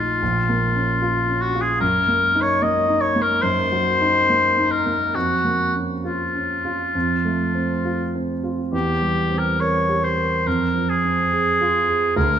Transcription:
Already playing: A#1 A3 D#4 F4
0.22 A#1
0.49 A#3
0.75 C#4
1.02 F4
1.28 C#4
1.41 F#4
1.55 F4
1.61 G#4
1.80 F#2 A#4
2.08 A#3
2.35 D#4
2.41 C#5
2.62 A#3 D#5
2.88 D#4
3.01 C#5
3.16 A#3
3.22 A#4
3.42 F#2 C5
3.72 F#3
4.01 D#4
4.30 A#3
4.58 D#4
4.71 A#4
4.86 A#3
5.15 F2 F#4
5.45 A#3
5.75 C#4
6.04 F4
6.35 C#4
6.65 F4
6.95 F2
7.25 A3
7.55 C4
7.85 F4
8.15 C4
8.44 F4
8.73 E2 G4
9.02 G3
9.31 C4
9.38 A#4
9.60 A#4 C#5
9.89 G4
10.04 C5
10.18 A#4
10.46 F2 A#4
10.75 F3
10.89 G#4
11.04 C4
11.33 G#4
11.61 F4
11.89 G#4
12.16 D2 A#4

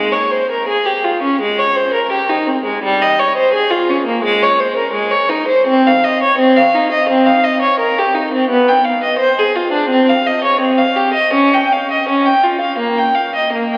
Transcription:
Already playing: G#3
0.13 C#5
0.31 C5
0.51 A#4
0.68 G#4
0.86 G4
1.04 F4
1.23 C#4
1.41 G#3
1.59 C#5
1.76 C5
1.94 A#4
2.12 G4
2.29 D#4
2.47 C4
2.65 G#3
2.83 G3
3.02 D#5
3.19 C#5
3.37 C5
3.53 G#4
3.71 F4
3.90 C#4
4.06 A#3
4.24 G#3
4.43 C#5
4.60 C5
4.77 A#4
4.93 G#3
5.11 C#5
5.29 D#4
5.48 C5
5.67 C4
5.87 F5
6.04 D#5
6.23 C#5
6.38 C4
6.56 F5
6.75 D#4
6.92 D#5
7.09 C4
7.26 F5
7.44 D#5
7.62 C#5
7.79 A#4
7.98 G4
8.15 D#4
8.33 C4
8.50 B3
8.68 G5
8.84 F5
9.03 D#5
9.19 C5
9.39 G#4
9.55 F4
9.72 D4
9.89 C4
10.09 F5
10.27 D#5
10.44 C#5
10.61 C4
10.78 F5
10.96 G4
11.14 D#5
11.34 C#4
11.54 G5
11.73 F5
11.91 D#5
12.09 C#4
12.26 G5
12.44 F4
12.61 F5
12.78 A#3
12.98 G5
13.15 F5
13.35 D#5
13.53 A#3
13.73 G5

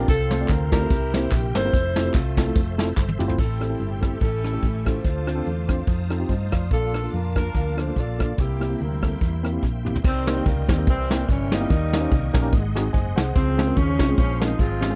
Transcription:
Already playing: F5 C6
0.07 C2 C3 C4 F4 A4 C5, kick, closed hi-hat, tambourine
0.31 A3 C4 F4 A4 C5, snare, closed hi-hat, tambourine
0.41 A3 C4 F4 A4 D5
0.48 D2 A#4, kick, clap, closed hi-hat, tambourine
0.72 A3 C4 E4 F4 G4 A4 A#4 D5, kick, snare, closed hi-hat, tambourine
0.82 A3 C4 F4 A4 C5
0.90 C2 C3 A#4 E5 G5, kick, closed hi-hat, tambourine
1.13 A#3 C4 E4 G4 A#4 C5, snare, closed hi-hat, tambourine
1.31 A#1 G4, kick, clap, closed hi-hat, tambourine
1.55 G1 A#3 C4 E4 G4 A4 A#4 C5, snare, closed hi-hat, tambourine
1.65 A#3 C4 E4 G4 A#4
1.73 F1 A4 C5, kick, closed hi-hat, tambourine
1.96 A3 C4 E4 F4 A4, snare, closed hi-hat, tambourine
2.06 A3 C4 E4 F4 G4
2.14 C2 A3 C4 F4, kick, clap, closed hi-hat, tambourine
2.37 A3 C4 E4 F4 A4, kick, snare, closed hi-hat, tambourine
2.47 A3 C4 E4 F4 A4
2.56 F1, kick, closed hi-hat, tambourine
2.78 A3 C4 E4 F4 A4, snare, closed hi-hat, tambourine
2.97 G1, kick, snare, clap, tambourine
3.08 high tom
3.19 G1 A3 C4 E4 F4 G4, mid tom, tambourine
3.28 A3 C4 E4 F4 C5, floor tom
3.38 A1 A2 A3 C4 E4 G4 A4 E5 G5 C6, kick, crash
3.60 C4 E4 G4 A4, cross-stick, closed hi-hat
3.70 C4 E4 G4 A4
3.80 G1 G4, closed hi-hat
4.01 C4 E4 G4 A4, kick, cross-stick, closed hi-hat
4.20 A1 A2 C#4 E4 A4 E5 C#6, kick, closed hi-hat
4.44 C#4 E4 G4 A4, cross-stick, closed hi-hat
4.53 C#4 E4 G4 A4
4.63 A1, kick, closed hi-hat
4.86 C#4 E4 F4 G4 A4 C5, kick, cross-stick, closed hi-hat
5.04 D2 D3 C4 D4 F4 C5 F5 A5 D6, kick, closed hi-hat
5.27 C4 D4 F4 A4, cross-stick, closed hi-hat
5.35 C4 D4 F4 A4
5.45 E2, closed hi-hat
5.68 C4 D4 F4 C5, kick, cross-stick, closed hi-hat
5.87 F2 D#4 D#6, kick, closed hi-hat
6.10 C4 D#4 F4 A4, cross-stick, closed hi-hat
6.20 C4 D#4 F4 G4
6.29 G2 C5 D#5, kick, closed hi-hat
6.52 F2 D5 F5, kick, cross-stick, closed hi-hat
6.71 A#1 A#2 F3 A#3 D4 F4 A4 A5 D6, kick, closed hi-hat
6.93 A#3 D4 F4 A4, cross-stick, closed hi-hat
7.04 A#3 D4 F4 A4
7.13 F2 A#4, closed hi-hat
7.36 A#3 D4 F4 A#4, kick, cross-stick, closed hi-hat
7.54 D2, kick, closed hi-hat
7.77 A#3 D4 F4 A4 C5, cross-stick, closed hi-hat
7.87 A#3 D4 F4 A4
7.96 A#1 F4 A4 D5, kick, closed hi-hat
8.19 A#3 D4 F4 A4, kick, cross-stick, closed hi-hat
8.37 C2 C3 G3 A#3 C4 E4 G4 E5 G5 C6, kick, closed hi-hat
8.60 A#3 C4 E4 G4, cross-stick, closed hi-hat
8.70 A#3 C4 E4 G4
8.80 D2 E4 G4 A#4, closed hi-hat
9.02 A#3 C4 E4 A4, kick, cross-stick, closed hi-hat
9.21 E2, kick, closed hi-hat
9.43 A#3 C4 E4 A#4, cross-stick, closed hi-hat
9.52 A#3 C4 E4 G4
9.63 A#1, kick, snare
9.85 A#3 C4 E4 G4, mid tom
9.95 floor tom
10.03 C2 C3 D#3 G3 C4 A#4 D#5 G5 C6, kick, crash
10.27 A#3 C4 D#4 G4 A#4, snare, closed hi-hat
10.36 A#3 C4 D#4 G4 C5
10.45 C#2 A#3, kick, closed hi-hat
10.68 D#2 A#3 C4 D#4 G4 C5, kick, snare, closed hi-hat
10.78 A#3 C4 D#4 G4 A#4
10.86 C2 C3 E3 G3 C4 E5, kick, closed hi-hat
11.10 A#3 C4 E4 G4 A#4, snare, closed hi-hat
11.29 G1 C#4, kick, closed hi-hat
11.51 G3 A#3 C4 D#4 E4 G4 C5, snare, closed hi-hat
11.61 A#3 C4 E4 G4 A#4
11.69 D#2 D#3 A#4 D#5 C#6, kick, closed hi-hat
11.92 A#3 C#4 D#4 G4 A#4, snare, closed hi-hat
12.01 A#3 C#4 D#4 G4 C5
12.11 C2, kick, closed hi-hat
12.33 A#1 A#3 C#4 D#4 G4 A#4, kick, snare, closed hi-hat
12.42 A#3 C#4 D#4 G4 A#4
12.52 G#1 G#2 G#4 D#5 F#5 C6, kick, closed hi-hat
12.75 G#3 C4 D#4 F#4 G#4, snare, closed hi-hat
12.93 F#1 C5 D#5 G#5, kick, closed hi-hat
13.16 C2 G#4 C5 F#5, snare, closed hi-hat
13.34 C#2 C#3 F3 G#3 C4 C5 F5, kick, closed hi-hat
13.57 G#3 C4 C#4 F4 G#4, snare, closed hi-hat
13.67 G#3 C4 C#4 F4 A#4
13.77 D#2 F3 G#3 C#4, kick, closed hi-hat
13.99 C2 G#3 C4 C#4 F4 G4, kick, snare, closed hi-hat
14.09 G#3 C4 C#4 F4 G#4
14.18 A#1 F3 G#3 C#4, kick, closed hi-hat
14.40 G#3 C4 C#4 D#4 F4 A#4, snare, closed hi-hat
14.58 G#1 G#3 C4 F4, kick, closed hi-hat
14.81 G#3 C4 C#4 F4 G4, snare, closed hi-hat
14.90 G#3 C4 C#4 F4 G#4

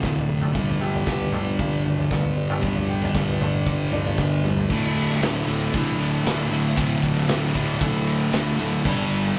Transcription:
Already playing: D2 A2 D3 A3 E4
0.03 A1 D3, kick, snare
0.16 floor tom
0.29 F1 A2
0.42 mid tom
0.54 G1 G2 D3 G3, kick, floor tom
0.68 floor tom
0.81 G1 G4, mid tom
0.94 floor tom
1.07 G1 B3, kick, snare
1.20 floor tom
1.32 G1 D4, floor tom, mid tom
1.59 G1 G4, kick, floor tom
1.85 D2 D4, floor tom
1.98 floor tom
2.11 G1 B3, kick, snare, mid tom
2.24 floor tom
2.37 G3
2.50 mid tom
2.62 G1 G2 D3 G3, kick, floor tom
2.76 floor tom
2.90 G4
3.02 floor tom
3.15 G1 B3, kick, snare
3.28 floor tom
3.40 G1 D4, floor tom, mid tom
3.66 G1 G4, kick, floor tom
3.92 G1 D4, floor tom
4.05 floor tom
4.18 D2 B3, kick, snare
4.44 G1 G3, mid tom
4.57 floor tom
4.70 D1 D2 A2 D3, kick, crash
4.96 D1, ride
5.11 snare
5.22 D1 D2 A2 D3, snare, ride
5.47 D1 D2 A2 D3, ride
5.74 A1 D2 A2 D3, kick, ride
6.00 D1, ride
6.25 D1 D2 A2 D3, snare, ride
6.50 D1 D2 A2 D3, ride
6.77 D1 D2 A2 D3, kick, ride
7.03 D1, kick, ride
7.17 snare
7.29 D1 D2 A2 D3, snare, ride
7.55 D1 D2 A2 D3, kick, ride
7.81 D1 D2 A2 D3, kick, ride
8.07 ride
8.33 D1 D2 A2 D3, snare, ride
8.59 D1 D2 A2 D3, ride
8.85 G1 G2 D3 G3, kick, crash
9.11 G1, ride

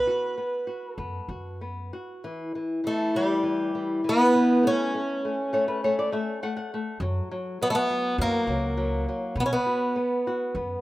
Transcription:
Already playing: B3 B4
0.07 F#4
0.38 B3
0.67 F#4
0.95 F#2 B3 A4
1.28 F#2 F#4
1.61 B3
1.93 F#4
2.24 E3
2.55 E3
2.84 E3 A3
3.15 E3 G3
3.43 E3
3.75 E3
4.04 E3
4.09 B3
4.35 E3
4.63 A3 C#4
4.95 A3
5.25 A3
5.53 A3 C#5
5.68 B4
5.84 A3 C#5
5.99 D5
6.12 A3 E5
6.43 A3 F#5
6.57 F#5
6.74 A3
7.00 F#2 F#3
7.31 F#3
7.62 F#3 B3
7.70 A3
7.75 B3
7.90 F#3
8.18 F#2 F#3 A#3
8.47 C#2 F#3
8.77 F#3
9.09 F#3
9.36 B1 B3
9.40 B3
9.46 C#4
9.53 B3
9.66 F#4
9.96 B3
10.27 F#4
10.55 F#2 B3

